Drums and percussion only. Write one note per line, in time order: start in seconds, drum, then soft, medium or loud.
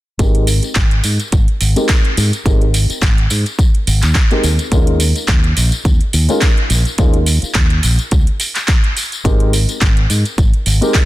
0.19 kick loud
0.19 closed hi-hat medium
0.19 tambourine soft
0.35 closed hi-hat soft
0.47 open hi-hat loud
0.47 tambourine medium
0.63 closed hi-hat soft
0.63 tambourine soft
0.75 kick loud
0.75 clap loud
0.75 closed hi-hat medium
0.75 tambourine soft
0.91 closed hi-hat soft
1.03 open hi-hat medium
1.03 tambourine medium
1.20 closed hi-hat soft
1.20 tambourine soft
1.32 kick loud
1.32 closed hi-hat medium
1.32 tambourine soft
1.48 closed hi-hat soft
1.61 open hi-hat loud
1.61 tambourine medium
1.76 closed hi-hat soft
1.76 tambourine soft
1.89 kick loud
1.89 clap loud
1.89 closed hi-hat medium
1.89 tambourine soft
2.05 closed hi-hat soft
2.17 open hi-hat medium
2.17 tambourine medium
2.33 closed hi-hat soft
2.33 tambourine soft
2.46 kick loud
2.46 closed hi-hat medium
2.46 tambourine soft
2.61 closed hi-hat soft
2.74 open hi-hat loud
2.74 tambourine medium
2.90 closed hi-hat soft
2.90 tambourine medium
3.02 kick loud
3.02 clap loud
3.02 closed hi-hat medium
3.18 closed hi-hat soft
3.30 open hi-hat medium
3.30 tambourine medium
3.46 closed hi-hat soft
3.46 tambourine soft
3.59 kick loud
3.59 closed hi-hat medium
3.59 tambourine soft
3.74 closed hi-hat soft
3.87 open hi-hat loud
3.87 tambourine medium
4.02 clap soft
4.02 closed hi-hat soft
4.02 tambourine soft
4.15 kick loud
4.15 clap loud
4.15 closed hi-hat medium
4.15 tambourine soft
4.31 closed hi-hat soft
4.44 open hi-hat medium
4.44 tambourine medium
4.59 closed hi-hat soft
4.59 tambourine soft
4.72 kick loud
4.72 closed hi-hat medium
4.72 tambourine soft
4.87 closed hi-hat soft
5.00 open hi-hat loud
5.00 tambourine medium
5.16 closed hi-hat soft
5.16 tambourine medium
5.28 kick loud
5.28 clap loud
5.28 closed hi-hat medium
5.28 tambourine soft
5.44 closed hi-hat soft
5.57 open hi-hat medium
5.57 tambourine medium
5.72 closed hi-hat soft
5.72 tambourine medium
5.85 kick loud
5.85 closed hi-hat medium
5.85 tambourine soft
6.01 closed hi-hat soft
6.13 open hi-hat loud
6.13 tambourine medium
6.29 closed hi-hat soft
6.29 tambourine soft
6.41 kick loud
6.41 clap loud
6.41 closed hi-hat medium
6.41 tambourine soft
6.57 closed hi-hat soft
6.70 open hi-hat medium
6.70 tambourine loud
6.85 closed hi-hat soft
6.85 tambourine soft
6.98 kick loud
6.98 closed hi-hat medium
6.98 tambourine soft
7.14 closed hi-hat soft
7.26 open hi-hat loud
7.26 tambourine medium
7.42 closed hi-hat soft
7.42 tambourine soft
7.54 kick loud
7.54 clap loud
7.54 closed hi-hat medium
7.70 closed hi-hat soft
7.83 open hi-hat medium
7.83 tambourine medium
7.99 closed hi-hat soft
7.99 tambourine soft
8.11 kick loud
8.11 closed hi-hat medium
8.11 tambourine soft
8.27 closed hi-hat soft
8.40 open hi-hat loud
8.40 tambourine medium
8.55 clap soft
8.55 closed hi-hat soft
8.55 tambourine soft
8.68 kick loud
8.68 clap loud
8.68 closed hi-hat medium
8.68 tambourine soft
8.84 closed hi-hat soft
8.97 open hi-hat medium
8.97 tambourine medium
9.12 closed hi-hat soft
9.12 tambourine soft
9.25 kick loud
9.25 closed hi-hat medium
9.25 tambourine soft
9.40 closed hi-hat soft
9.53 open hi-hat loud
9.53 tambourine medium
9.69 closed hi-hat soft
9.69 tambourine medium
9.81 kick loud
9.81 clap loud
9.81 closed hi-hat medium
9.81 tambourine soft
9.97 closed hi-hat soft
10.10 open hi-hat medium
10.10 tambourine medium
10.25 closed hi-hat soft
10.25 tambourine soft
10.38 kick loud
10.38 closed hi-hat medium
10.38 tambourine soft
10.54 closed hi-hat soft
10.66 open hi-hat medium
10.66 tambourine medium
10.82 closed hi-hat soft
10.82 tambourine soft
10.94 kick loud
10.94 clap loud
10.94 closed hi-hat medium
10.94 tambourine soft